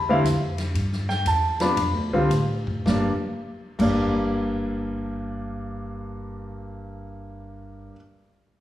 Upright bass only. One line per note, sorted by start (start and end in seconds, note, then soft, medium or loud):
0.00 0.23 E2 medium
0.24 0.73 F2 medium
0.74 1.24 G2 medium
1.25 1.76 E2 medium
1.76 1.94 F2 medium
1.94 2.11 D2 soft
2.11 2.29 C2 medium
2.30 2.84 A2 medium
2.86 3.07 G1 medium
3.79 7.89 G1 medium